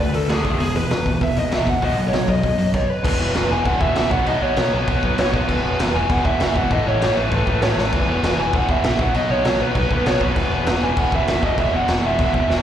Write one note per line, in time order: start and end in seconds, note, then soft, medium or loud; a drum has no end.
0.00 0.13 D2 medium
0.00 0.12 D3 medium
0.00 0.12 A3 medium
0.00 0.15 B4 medium
0.13 0.28 D2 medium
0.13 0.27 D3 medium
0.13 0.28 A3 medium
0.13 0.29 A4 medium
0.13 open hi-hat medium
0.29 0.44 D2 medium
0.29 0.44 D3 medium
0.29 0.44 A3 medium
0.29 0.44 D4 medium
0.29 0.51 G#4 medium
0.29 snare loud
0.29 open hi-hat medium
0.44 0.59 E1 medium
0.44 0.58 E2 medium
0.44 0.58 B2 medium
0.44 0.59 E3 loud
0.44 kick loud
0.44 open hi-hat medium
0.59 0.74 E1 medium
0.59 0.73 E2 medium
0.59 0.73 B2 medium
0.59 0.76 G#4 medium
0.59 open hi-hat medium
0.75 0.90 E1 medium
0.75 0.89 E2 medium
0.75 0.89 B2 medium
0.75 1.19 B4 medium
0.75 open hi-hat medium
0.90 1.05 E1 medium
0.90 1.04 E2 medium
0.90 1.04 B2 medium
0.90 snare loud
0.90 open hi-hat medium
1.06 1.20 E1 medium
1.06 1.20 E2 medium
1.06 1.20 B2 medium
1.06 kick medium
1.06 open hi-hat medium
1.21 1.35 E1 medium
1.21 1.35 E2 medium
1.21 1.35 B2 medium
1.21 1.38 E5 loud
1.21 kick loud
1.21 open hi-hat medium
1.36 1.51 B1 medium
1.36 1.50 E2 medium
1.36 1.51 B2 medium
1.36 1.53 D#5 medium
1.36 open hi-hat medium
1.51 1.66 E1 medium
1.51 1.66 E2 medium
1.51 1.66 B2 medium
1.51 1.66 E3 loud
1.51 1.69 E5 medium
1.51 snare loud
1.51 open hi-hat medium
1.67 1.82 A#1 medium
1.67 1.81 E2 medium
1.67 1.81 B2 medium
1.67 1.84 F#5 medium
1.67 kick medium
1.67 open hi-hat medium
1.82 1.97 B1 medium
1.82 1.97 B2 medium
1.82 1.97 F#3 loud
1.82 1.97 B3 loud
1.82 2.07 D#5 medium
1.82 kick medium
1.82 open hi-hat medium
1.98 2.12 B1 medium
1.98 2.12 B2 medium
1.98 2.12 F#3 medium
1.98 open hi-hat soft
2.08 2.29 C#5 medium
2.13 2.27 B1 medium
2.13 2.27 B2 medium
2.13 2.27 F#3 medium
2.13 snare loud
2.13 open hi-hat medium
2.28 2.43 B1 medium
2.28 2.42 B2 medium
2.28 2.42 F#3 medium
2.28 2.86 D#5 medium
2.28 kick medium
2.28 open hi-hat soft
2.43 2.58 B1 medium
2.43 2.57 B2 medium
2.43 2.58 F#3 medium
2.43 kick loud
2.43 open hi-hat medium
2.58 2.73 F#2 medium
2.58 2.72 B2 medium
2.58 2.73 F#3 medium
2.58 open hi-hat medium
2.74 2.90 C#5 medium
2.74 kick loud
2.74 crash medium
2.90 3.53 B4 medium
3.04 3.14 E1 medium
3.04 3.20 E2 loud
3.04 3.19 B2 loud
3.04 3.18 E3 loud
3.04 kick loud
3.04 crash loud
3.04 crash medium
3.20 3.30 E1 medium
3.20 3.34 E2 medium
3.20 3.34 B2 medium
3.20 3.35 E3 medium
3.35 3.45 E1 medium
3.35 3.49 E2 medium
3.35 3.49 B2 medium
3.35 3.49 E3 medium
3.35 snare loud
3.35 crash medium
3.50 3.60 E1 medium
3.50 3.65 E2 medium
3.50 3.65 B2 medium
3.50 3.65 E3 medium
3.50 3.66 G#5 loud
3.65 3.75 E1 medium
3.65 3.81 E2 loud
3.65 3.80 B2 loud
3.65 3.80 E3 loud
3.65 3.81 F#5 loud
3.65 kick loud
3.65 crash medium
3.81 3.91 E1 medium
3.81 3.95 E2 medium
3.81 3.96 B2 medium
3.81 3.96 E3 medium
3.81 4.11 E5 loud
3.81 kick loud
3.95 4.06 E1 loud
3.95 4.11 E2 medium
3.95 4.10 B2 medium
3.95 4.11 E3 medium
3.95 snare loud
3.95 crash medium
4.11 4.21 B1 medium
4.11 4.26 B2 loud
4.11 4.25 F#3 loud
4.11 4.25 B3 loud
4.11 4.27 F#5 loud
4.11 kick loud
4.26 4.36 B1 loud
4.26 4.40 B2 medium
4.26 4.40 F#3 loud
4.26 4.42 B3 loud
4.26 4.43 D#5 loud
4.26 crash medium
4.41 4.51 B1 loud
4.41 4.57 B2 medium
4.41 4.57 F#3 medium
4.41 4.57 B3 loud
4.41 4.74 C#5 loud
4.56 4.67 B1 medium
4.56 4.71 B2 medium
4.56 4.72 F#3 medium
4.56 4.73 B3 loud
4.56 snare loud
4.56 crash medium
4.72 4.83 B1 medium
4.72 4.88 B2 medium
4.72 4.88 F#3 medium
4.72 4.87 B3 medium
4.72 5.20 B4 loud
4.88 4.97 B1 medium
4.88 5.03 B2 medium
4.88 5.03 F#3 medium
4.88 5.03 B3 loud
4.88 kick loud
4.88 crash medium
5.03 5.13 B1 medium
5.03 5.18 B2 medium
5.03 5.18 F#3 medium
5.03 5.17 B3 loud
5.03 kick loud
5.18 5.28 B1 loud
5.18 5.32 B2 medium
5.18 5.33 F#3 loud
5.18 5.33 B3 loud
5.18 5.35 C#5 loud
5.18 snare loud
5.18 crash medium
5.33 5.49 B1 loud
5.33 5.47 B2 medium
5.33 5.48 F#3 medium
5.33 5.48 B3 loud
5.33 5.97 B4 medium
5.33 kick medium
5.48 5.58 E1 loud
5.48 5.64 E2 loud
5.48 5.63 B2 loud
5.48 5.64 E3 loud
5.48 kick medium
5.48 crash medium
5.64 5.74 E1 loud
5.64 5.78 E2 medium
5.64 5.79 B2 medium
5.64 5.80 E3 medium
5.79 5.89 E1 loud
5.79 5.94 E2 medium
5.79 5.94 B2 loud
5.79 5.93 E3 loud
5.79 snare loud
5.79 crash medium
5.94 6.04 E1 medium
5.94 6.08 E2 medium
5.94 6.09 B2 medium
5.94 6.10 E3 loud
5.94 6.11 G#5 loud
6.09 6.19 E1 medium
6.09 6.24 E2 loud
6.09 6.24 B2 loud
6.09 6.24 E3 loud
6.09 6.26 F#5 loud
6.09 kick loud
6.09 crash medium
6.24 6.35 E1 medium
6.24 6.39 E2 medium
6.24 6.40 B2 medium
6.24 6.41 E3 loud
6.24 6.56 E5 loud
6.24 kick medium
6.40 6.50 E1 loud
6.40 6.55 E2 medium
6.40 6.55 B2 medium
6.40 6.55 E3 medium
6.40 snare loud
6.40 crash medium
6.56 6.65 G#1 loud
6.56 6.71 E2 medium
6.56 6.70 B2 medium
6.56 6.70 E3 loud
6.56 6.72 F#5 loud
6.56 kick loud
6.70 6.81 A1 medium
6.70 6.86 A2 loud
6.70 6.86 E3 loud
6.70 6.85 A3 loud
6.70 6.87 D#5 loud
6.70 kick loud
6.70 crash medium
6.86 6.96 A1 medium
6.86 7.00 A2 medium
6.86 7.00 E3 medium
6.86 7.01 A3 loud
6.86 7.18 C#5 loud
7.01 7.11 A1 medium
7.01 7.16 A2 medium
7.01 7.16 E3 loud
7.01 7.15 A3 loud
7.01 snare loud
7.01 crash medium
7.16 7.27 A1 medium
7.16 7.29 A2 medium
7.16 7.30 E3 medium
7.16 7.30 A3 medium
7.16 7.62 B4 medium
7.30 7.42 A1 medium
7.30 7.47 A2 loud
7.30 7.46 E3 loud
7.30 7.45 A3 loud
7.30 kick loud
7.30 crash medium
7.47 7.57 A1 medium
7.47 7.60 A2 medium
7.47 7.61 E3 medium
7.47 7.61 A3 medium
7.47 kick medium
7.61 7.71 A1 medium
7.61 7.77 A2 medium
7.61 7.77 E3 medium
7.61 7.76 A3 loud
7.61 7.78 C#5 medium
7.61 snare loud
7.61 crash medium
7.77 7.92 A1 medium
7.77 7.92 A2 medium
7.77 7.92 E3 medium
7.77 7.92 A3 medium
7.77 8.41 B4 medium
7.77 snare medium
7.92 8.02 E1 medium
7.92 8.07 E2 medium
7.92 8.07 B2 loud
7.92 8.07 E3 loud
7.92 kick loud
7.92 crash medium
8.08 8.17 E1 medium
8.08 8.22 E2 medium
8.08 8.23 B2 medium
8.08 8.24 E3 medium
8.23 8.33 E1 loud
8.23 8.39 E2 medium
8.23 8.38 B2 medium
8.23 8.37 E3 loud
8.23 snare loud
8.23 crash medium
8.38 8.48 E1 medium
8.38 8.52 E2 medium
8.38 8.52 B2 medium
8.38 8.53 E3 loud
8.38 8.54 G#5 loud
8.53 8.63 E1 medium
8.53 8.69 E2 loud
8.53 8.68 B2 medium
8.53 8.67 E3 loud
8.53 8.70 F#5 loud
8.53 kick loud
8.53 crash medium
8.68 8.79 E1 medium
8.68 8.82 E2 medium
8.68 8.83 B2 medium
8.68 8.84 E3 medium
8.68 9.01 E5 loud
8.68 kick loud
8.84 8.94 A#1 loud
8.84 8.98 E2 medium
8.84 8.97 B2 medium
8.84 8.99 E3 medium
8.84 snare loud
8.84 crash medium
8.98 9.09 B1 medium
8.98 9.14 B2 loud
8.98 9.13 F#3 loud
8.98 9.14 B3 loud
8.98 9.16 F#5 loud
8.98 kick loud
9.14 9.24 B1 medium
9.14 9.29 B2 loud
9.14 9.29 F#3 loud
9.14 9.31 B3 loud
9.14 9.31 D#5 loud
9.14 crash medium
9.30 9.40 B1 medium
9.30 9.44 B2 medium
9.30 9.43 F#3 loud
9.30 9.44 B3 loud
9.30 9.62 C#5 medium
9.44 9.55 B1 loud
9.44 9.58 B2 medium
9.44 9.59 F#3 loud
9.44 9.60 B3 loud
9.44 snare loud
9.44 crash medium
9.60 9.70 B1 medium
9.60 9.75 B2 medium
9.60 9.74 F#3 loud
9.60 9.75 B3 loud
9.60 10.08 B4 medium
9.75 9.85 B1 medium
9.75 9.89 B2 medium
9.75 9.90 F#3 loud
9.75 9.91 B3 loud
9.75 kick loud
9.75 crash medium
9.91 10.00 B1 medium
9.91 10.06 B2 medium
9.91 10.05 F#3 medium
9.91 10.05 B3 medium
9.91 kick loud
10.06 10.16 B1 loud
10.06 10.20 B2 medium
10.06 10.21 F#3 medium
10.06 10.22 B3 loud
10.06 10.22 C#5 medium
10.06 snare loud
10.06 crash medium
10.21 10.31 B1 loud
10.21 10.36 B2 medium
10.21 10.36 F#3 medium
10.21 12.62 B3 loud
10.21 10.85 B4 medium
10.21 kick medium
10.36 10.46 E1 medium
10.36 10.53 E2 loud
10.36 10.51 B2 loud
10.36 10.51 E3 loud
10.36 kick loud
10.36 crash medium
10.51 10.61 E1 medium
10.51 10.67 E2 medium
10.51 10.67 B2 medium
10.51 10.68 E3 loud
10.66 10.77 E1 medium
10.66 10.83 E2 loud
10.66 10.82 B2 loud
10.66 10.82 E3 loud
10.66 snare loud
10.66 crash medium
10.82 10.91 E1 medium
10.82 10.97 E2 medium
10.82 10.97 B2 loud
10.82 10.98 E3 loud
10.82 10.98 G#5 loud
10.97 11.07 E1 medium
10.97 11.14 E2 medium
10.97 11.12 B2 loud
10.97 11.13 E3 loud
10.97 11.12 F#5 medium
10.97 kick loud
10.97 crash medium
11.12 11.22 E1 medium
11.12 11.27 E2 medium
11.12 11.27 B2 medium
11.12 11.29 E3 loud
11.12 11.45 E5 loud
11.12 kick medium
11.27 11.37 E1 loud
11.27 11.44 E2 medium
11.27 11.42 B2 medium
11.27 11.42 E3 medium
11.27 snare loud
11.27 crash medium
11.43 11.53 E1 loud
11.43 11.58 E2 medium
11.43 11.58 B2 medium
11.43 11.59 E3 medium
11.43 11.58 D#5 medium
11.43 kick medium
11.58 11.68 E1 medium
11.58 11.74 E2 medium
11.58 11.74 B2 loud
11.58 11.73 E3 loud
11.58 11.75 E5 loud
11.58 kick loud
11.58 crash medium
11.73 11.83 E1 loud
11.73 11.87 E2 medium
11.73 11.89 B2 medium
11.73 11.89 E3 loud
11.73 12.06 F#5 loud
11.88 11.98 E1 medium
11.88 12.03 E2 medium
11.88 12.02 B2 loud
11.88 12.02 E3 loud
11.88 snare loud
11.88 crash medium
12.03 12.13 E1 medium
12.03 12.18 E2 medium
12.03 12.18 B2 medium
12.03 12.19 E3 loud
12.03 12.48 E5 medium
12.19 12.29 E1 medium
12.19 12.34 E2 loud
12.19 12.34 B2 loud
12.19 12.33 E3 loud
12.19 kick loud
12.19 crash medium
12.34 12.44 E1 medium
12.34 12.48 E2 medium
12.34 12.48 B2 medium
12.34 12.49 E3 medium
12.34 kick loud
12.49 12.59 E1 loud
12.49 12.62 E2 medium
12.49 12.62 B2 medium
12.49 12.62 E3 medium
12.49 snare medium